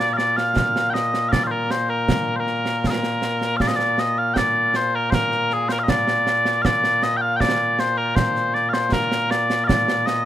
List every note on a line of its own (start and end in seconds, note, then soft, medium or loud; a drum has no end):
0.00 10.25 A#2 medium
0.00 10.25 A#3 medium
0.00 0.13 D5 loud
0.00 snare medium
0.13 0.37 D5 loud
0.13 0.17 F5 loud
0.19 snare medium
0.37 0.90 F5 medium
0.37 snare medium
0.56 concert bass drum medium
0.56 snare loud
0.76 snare medium
0.90 1.29 D#5 medium
0.90 0.94 G5 medium
0.95 snare medium
1.14 snare medium
1.29 1.44 D5 medium
1.29 1.32 F5 medium
1.29 concert bass drum medium
1.29 snare loud
1.44 1.51 C5 medium
1.44 1.47 F5 medium
1.51 1.71 A#4 medium
1.71 1.90 C5 medium
1.71 snare medium
1.90 2.36 A#4 medium
2.08 concert bass drum medium
2.08 snare loud
2.36 2.87 A#4 medium
2.36 2.40 C5 medium
2.47 snare soft
2.65 snare medium
2.84 2.90 G#4 medium
2.84 concert bass drum medium
2.84 snare loud
2.90 3.57 A#4 medium
3.03 snare medium
3.22 snare medium
3.41 snare medium
3.57 3.61 F5 loud
3.57 concert bass drum medium
3.57 snare loud
3.61 3.67 D5 loud
3.67 3.76 D#5 medium
3.76 3.99 D5 loud
3.76 snare medium
3.98 4.18 D#5 loud
3.98 snare medium
4.18 4.34 F5 loud
4.34 4.76 D5 loud
4.34 4.37 G5 loud
4.34 concert bass drum medium
4.34 snare loud
4.74 4.95 C5 loud
4.74 snare medium
4.95 5.10 A#4 medium
5.10 5.14 C5 loud
5.10 concert bass drum medium
5.10 snare loud
5.14 5.53 A#4 loud
5.32 snare soft
5.50 5.69 G#4 medium
5.50 snare soft
5.69 5.79 A#4 loud
5.69 5.72 C5 loud
5.69 snare medium
5.79 5.83 F5 medium
5.83 5.89 D#5 medium
5.88 6.62 D5 loud
5.88 concert bass drum medium
5.88 snare loud
6.08 snare medium
6.27 snare medium
6.45 snare medium
6.62 7.03 D5 loud
6.62 6.65 F5 loud
6.62 concert bass drum medium
6.62 snare loud
6.84 snare medium
7.03 7.17 D#5 loud
7.03 snare medium
7.17 7.21 G5 loud
7.21 7.36 F5 loud
7.36 7.40 G5 loud
7.40 7.80 D5 loud
7.40 concert bass drum medium
7.40 snare loud
7.79 7.98 C5 loud
7.79 snare medium
7.98 8.15 A#4 medium
8.15 8.54 C5 loud
8.15 concert bass drum medium
8.15 snare loud
8.36 snare soft
8.54 8.69 D5 loud
8.54 snare soft
8.69 8.73 F5 medium
8.73 8.93 C5 medium
8.73 snare medium
8.92 9.31 A#4 medium
8.92 concert bass drum medium
8.92 snare loud
9.12 snare medium
9.31 9.64 D5 loud
9.31 snare medium
9.50 snare medium
9.64 10.06 D5 loud
9.64 9.67 F5 loud
9.69 concert bass drum medium
9.69 snare loud
9.88 snare medium
10.06 10.25 D#5 loud
10.06 snare medium